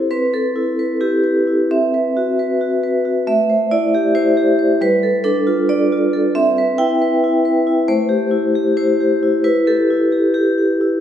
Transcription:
0.00 0.11 C4 soft
0.00 0.13 E4 soft
0.00 0.13 G4 soft
0.00 0.13 A4 soft
0.00 0.13 C5 medium
0.11 1.67 C4 soft
0.11 0.32 B4 medium
0.33 1.00 A4 medium
0.33 0.69 B4 soft
0.56 0.91 E4 soft
0.79 1.15 B4 soft
1.01 1.37 E4 soft
1.01 1.71 G4 medium
1.24 1.62 B4 soft
1.47 1.71 E4 soft
1.71 3.23 C4 medium
1.71 2.38 E5 medium
1.94 2.29 B4 soft
2.17 2.52 F#4 soft
2.39 2.74 B4 soft
2.61 2.96 F#4 soft
2.83 3.18 B4 soft
3.05 3.27 F#4 soft
3.27 4.76 A3 soft
3.27 3.71 E5 medium
3.50 3.85 C5 soft
3.71 4.06 E4 medium
3.71 4.15 D5 medium
3.95 4.29 G4 medium
4.15 4.50 E4 soft
4.15 4.58 C5 medium
4.37 4.72 G4 soft
4.59 4.81 C5 soft
4.81 6.31 G3 medium
4.81 5.25 B4 medium
5.03 5.23 A4 soft
5.24 5.60 D4 soft
5.24 5.69 A4 medium
5.47 5.82 F4 medium
5.69 6.04 D4 soft
5.69 6.35 D5 medium
5.92 6.26 F4 soft
6.13 6.35 A4 soft
6.35 7.85 C4 medium
6.35 6.79 E5 medium
6.58 6.93 B4 medium
6.78 7.14 E4 medium
6.78 7.88 G5 loud
7.02 7.36 B4 medium
7.24 7.58 E4 soft
7.45 7.80 B4 soft
7.67 7.89 E4 soft
7.88 9.41 A3 medium
7.88 8.76 C5 medium
8.09 8.45 G4 soft
8.31 8.68 E4 soft
8.55 8.91 G4 soft
8.77 9.13 E4 soft
8.77 9.44 C5 medium
9.00 9.36 G4 soft
9.23 9.43 E4 soft
9.44 9.89 E4 medium
9.44 9.67 B4 medium
9.67 10.03 G4 soft
9.67 10.35 A4 medium
9.91 10.26 E4 soft
10.12 10.33 G4 soft
10.34 10.71 E4 soft
10.34 10.57 G4 medium
10.58 10.95 G4 soft
10.81 11.00 E4 soft

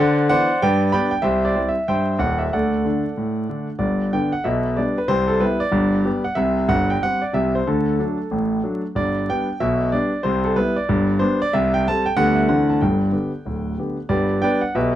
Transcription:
0.00 0.24 D3 loud
0.00 0.27 C5 medium
0.00 0.27 D5 medium
0.00 0.28 F#5 loud
0.29 0.47 E3 medium
0.29 0.47 B3 medium
0.29 0.47 D4 medium
0.29 0.60 C5 medium
0.29 0.59 D5 medium
0.29 0.61 F#5 loud
0.62 0.89 G2 loud
0.62 0.92 B4 medium
0.62 0.92 D5 medium
0.62 0.92 G5 loud
0.92 1.11 G3 medium
0.92 1.11 B3 medium
0.92 1.11 D4 medium
0.92 1.12 D5 medium
0.92 1.09 G5 loud
0.92 1.13 B5 loud
1.11 1.24 G5 medium
1.22 1.51 C2 medium
1.22 1.44 G4 medium
1.22 1.44 C5 medium
1.22 1.45 E5 loud
1.45 1.67 D5 medium
1.56 1.74 G3 medium
1.56 1.74 C4 medium
1.56 1.74 E4 medium
1.69 1.87 E5 medium
1.88 2.16 G2 medium
1.88 2.19 C5 medium
1.88 2.18 E5 medium
1.88 2.21 G5 medium
2.18 2.46 D#1 medium
2.18 2.45 D#2 medium
2.18 2.40 F#5 medium
2.38 2.52 E5 medium
2.53 2.80 D2 medium
2.53 3.65 A4 medium
2.53 3.65 D5 medium
2.53 3.69 F#5 medium
2.85 3.02 D3 medium
2.85 3.04 A3 medium
2.85 3.03 D4 soft
3.17 3.44 A2 medium
3.49 3.67 D3 soft
3.49 3.67 A3 soft
3.49 3.67 D4 medium
3.79 4.07 G1 medium
3.79 4.07 G2 medium
3.79 4.12 D5 medium
4.13 4.31 D3 soft
4.13 4.31 B3 soft
4.13 4.32 D4 medium
4.13 4.33 G5 medium
4.32 4.45 F#5 medium
4.44 4.72 B1 medium
4.44 4.72 B2 medium
4.44 4.77 E5 medium
4.77 4.95 G3 medium
4.77 4.95 B3 medium
4.77 4.96 D4 soft
4.77 4.97 D5 medium
4.98 5.10 B4 medium
5.08 5.36 C2 medium
5.08 5.36 C3 medium
5.08 5.29 C5 loud
5.28 5.41 A4 medium
5.40 5.58 G3 medium
5.40 5.59 B3 medium
5.40 5.60 E4 medium
5.40 5.61 B4 loud
5.60 6.25 D5 loud
5.72 6.00 G1 medium
5.72 6.00 G2 loud
6.05 6.23 G3 medium
6.05 6.23 B3 medium
6.05 6.23 G4 medium
6.24 6.37 F#5 medium
6.35 6.63 C2 medium
6.35 6.63 C3 medium
6.35 6.69 E5 loud
6.68 6.95 G1 medium
6.68 6.95 G2 medium
6.68 6.89 F#5 loud
6.90 7.02 G5 medium
7.03 7.20 G3 medium
7.03 7.21 C4 medium
7.03 7.21 G4 medium
7.03 7.22 F#5 loud
7.22 7.34 D5 medium
7.33 7.60 C2 medium
7.33 7.59 C3 medium
7.33 7.54 E5 medium
7.55 7.67 C5 medium
7.67 7.94 D2 medium
7.67 7.94 D3 medium
7.67 8.83 A4 medium
7.99 8.17 F#3 soft
7.99 8.17 A3 soft
7.99 8.17 D4 medium
8.31 8.58 A1 medium
8.31 8.58 A2 medium
8.63 8.81 F#3 medium
8.63 8.81 A3 soft
8.63 8.81 D4 soft
8.95 9.22 G1 medium
8.95 9.23 G2 medium
8.95 9.28 D5 medium
9.30 9.47 G3 soft
9.30 9.47 B3 medium
9.30 9.47 D4 medium
9.30 9.60 G5 loud
9.60 9.87 B1 medium
9.60 9.87 B2 medium
9.60 9.92 E5 loud
9.92 10.10 G3 soft
9.92 10.11 B3 soft
9.92 10.11 D4 medium
9.92 10.24 D5 medium
10.23 10.51 C2 medium
10.23 10.51 C3 medium
10.23 10.43 C5 medium
10.45 10.56 A4 medium
10.56 10.74 G3 medium
10.56 10.74 B3 medium
10.56 10.75 E4 medium
10.56 10.76 B4 loud
10.76 11.20 D5 medium
10.89 11.16 G1 medium
10.89 11.16 G2 medium
11.19 11.38 G3 soft
11.19 11.38 B3 medium
11.19 11.38 D4 medium
11.19 11.40 C5 loud
11.42 11.53 D5 loud
11.53 11.80 C2 medium
11.53 11.80 C3 medium
11.53 11.73 E5 loud
11.74 11.85 G5 loud
11.88 12.05 G3 medium
11.88 12.05 C4 medium
11.88 12.06 A4 medium
11.88 12.06 A5 loud
12.06 12.17 G5 loud
12.16 12.44 D2 medium
12.16 12.44 D3 loud
12.16 12.34 G3 soft
12.16 12.35 B3 medium
12.16 12.35 G4 soft
12.16 12.36 F#5 loud
12.35 12.48 E5 medium
12.49 12.76 D2 medium
12.49 12.76 D3 medium
12.49 12.67 E3 soft
12.49 12.66 C4 soft
12.49 12.67 A4 soft
12.49 12.68 F#5 medium
12.70 12.81 A5 medium
12.81 13.09 G1 medium
12.81 13.09 G2 medium
12.81 13.77 G5 medium
13.12 13.30 D3 soft
13.12 13.30 B3 soft
13.12 13.31 G4 soft
13.45 13.72 D1 medium
13.45 13.73 D2 medium
13.79 13.96 D3 soft
13.79 13.96 B3 soft
13.79 13.96 G4 soft
14.09 14.36 G1 medium
14.09 14.36 G2 medium
14.09 14.39 G4 medium
14.09 14.40 B4 medium
14.09 14.41 D5 medium
14.42 14.60 G3 medium
14.42 14.60 B3 medium
14.42 14.60 D4 medium
14.42 14.61 B4 medium
14.42 14.61 D5 medium
14.42 14.61 G5 loud
14.61 14.73 F#5 medium
14.75 14.95 B1 medium
14.75 14.95 B2 medium
14.75 14.95 G4 medium
14.75 14.95 B4 medium
14.75 14.95 E5 medium

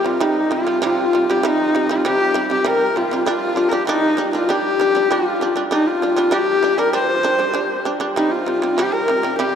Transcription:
0.04 0.17 C3 medium
0.04 0.18 G3 medium
0.04 0.21 F4 medium
0.04 0.23 F4 medium
0.20 0.45 C3 medium
0.20 0.45 G3 loud
0.20 0.51 D#4 medium
0.20 0.54 D#4 medium
0.50 0.63 C3 medium
0.50 0.64 G3 medium
0.50 0.80 F4 medium
0.50 0.83 F4 medium
0.67 0.79 C3 medium
0.67 0.79 G3 medium
0.81 1.06 C3 loud
0.81 1.07 G3 loud
0.81 1.35 F4 medium
0.81 1.31 F4 medium
1.13 1.25 C3 medium
1.13 1.26 G3 medium
1.30 1.41 C3 medium
1.30 1.42 G3 medium
1.30 1.48 G4 medium
1.35 1.43 F4 medium
1.42 1.68 C3 loud
1.42 1.69 G3 loud
1.42 2.07 D#4 medium
1.46 1.94 D#4 loud
1.75 1.87 C3 medium
1.75 1.87 G3 medium
1.89 2.02 C3 medium
1.89 2.02 G3 medium
1.89 2.06 F4 medium
2.05 2.29 C3 medium
2.05 2.30 G3 medium
2.05 2.39 G4 medium
2.05 2.49 G4 loud
2.34 2.47 C3 medium
2.34 2.48 G3 medium
2.50 2.62 C3 medium
2.50 2.63 G3 medium
2.50 2.68 G4 medium
2.65 2.90 C3 medium
2.65 2.90 G3 medium
2.65 2.98 A#4 medium
2.65 2.97 A#4 medium
2.96 3.08 C3 medium
2.96 3.09 G3 medium
2.96 3.27 F4 medium
3.11 3.24 C3 medium
3.11 3.25 G3 medium
3.26 3.51 G3 medium
3.26 3.52 D4 loud
3.26 3.90 F4 medium
3.26 3.70 F4 medium
3.56 3.69 G3 medium
3.56 3.70 D4 medium
3.69 3.85 G3 medium
3.69 3.85 D4 medium
3.69 3.75 A#4 medium
3.73 3.87 G4 medium
3.87 4.12 G3 loud
3.87 4.13 D4 loud
3.87 4.31 D#4 loud
3.87 4.50 D#4 medium
4.17 4.30 G3 medium
4.17 4.31 D4 medium
4.33 4.46 G3 medium
4.33 4.47 D4 medium
4.33 4.51 F4 medium
4.48 4.74 G3 loud
4.48 4.74 D4 loud
4.48 5.10 G4 medium
4.48 5.14 G4 loud
4.80 4.92 G3 medium
4.80 4.93 D4 medium
4.95 5.08 G3 medium
4.95 5.08 D4 medium
5.08 5.35 G3 medium
5.08 5.36 D4 medium
5.08 5.56 F4 medium
5.12 5.58 F4 medium
5.41 5.54 G3 medium
5.41 5.54 D4 medium
5.56 5.69 G3 medium
5.56 5.69 D4 medium
5.71 5.96 G3 medium
5.71 5.97 D4 loud
5.71 5.90 D#4 medium
5.71 5.88 D#4 medium
5.87 6.34 F4 medium
5.87 6.33 F4 medium
6.02 6.15 G3 medium
6.02 6.15 D4 medium
6.17 6.30 G3 medium
6.17 6.30 D4 medium
6.31 6.57 G3 medium
6.31 6.57 D4 loud
6.31 6.81 G4 loud
6.31 6.81 G4 medium
6.63 6.76 G3 medium
6.63 6.76 D4 medium
6.78 6.91 G3 medium
6.78 6.91 D4 medium
6.78 6.92 A#4 medium
6.78 6.94 A#4 medium
6.93 7.18 G3 medium
6.93 7.19 D4 loud
6.93 7.82 C5 medium
6.93 7.82 C5 loud
7.23 7.37 G3 medium
7.23 7.37 D4 medium
7.39 7.52 G3 medium
7.39 7.52 D4 medium
7.54 7.79 G3 medium
7.54 7.80 D4 medium
7.85 7.98 G3 medium
7.85 7.98 D4 medium
8.00 8.13 G3 medium
8.00 8.13 D4 medium
8.16 8.41 C3 medium
8.16 8.42 G3 medium
8.16 8.33 D#4 medium
8.16 8.34 D#4 medium
8.31 8.79 F4 medium
8.46 8.59 C3 medium
8.46 8.60 G3 medium
8.62 8.75 C3 medium
8.62 8.75 G3 medium
8.77 9.02 C3 loud
8.77 9.03 G3 loud
8.77 8.95 G4 medium
8.93 9.40 A#4 medium
8.93 9.38 A#4 medium
9.08 9.21 C3 medium
9.08 9.21 G3 medium
9.23 9.36 C3 medium
9.23 9.36 G3 medium
9.38 9.55 C3 medium
9.38 9.55 G3 loud
9.38 9.55 G4 medium

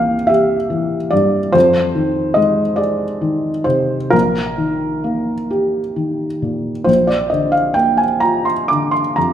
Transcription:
0.00 1.51 C2 soft
0.00 0.14 E3 soft
0.00 0.55 A#3 soft
0.00 0.29 F5 medium
0.00 1.57 G5 medium
0.27 0.96 G4 soft
0.27 1.11 E5 medium
0.70 1.37 E3 soft
1.11 1.55 G2 soft
1.11 1.54 D5 medium
1.52 4.10 F2 soft
1.52 2.36 C5 medium
1.95 2.62 D#3 soft
2.34 3.04 G#3 soft
2.34 2.77 D#5 medium
2.76 3.49 G#4 soft
2.76 3.66 D5 medium
3.21 3.95 D#3 soft
3.64 4.13 C3 soft
3.64 4.12 C5 medium
4.10 6.83 A#1 soft
4.10 6.86 A#4 medium
4.58 5.32 D#3 soft
5.04 5.78 A#3 soft
5.51 6.24 G4 soft
5.96 6.70 D#3 soft
6.42 6.87 A#2 soft
6.84 9.33 A#1 soft
6.84 7.08 C5 medium
7.07 7.31 D5 soft
7.30 8.04 D3 soft
7.30 7.53 D#5 soft
7.52 7.75 F5 soft
7.74 8.51 A#3 soft
7.74 7.98 G5 medium
7.97 8.22 G#5 soft
8.20 8.99 F4 soft
8.20 8.45 A#5 medium
8.45 8.70 C6 soft
8.68 9.33 D3 soft
8.68 8.93 D6 medium
8.91 9.17 C6 medium
9.16 9.33 F2 soft
9.16 9.33 A#5 medium

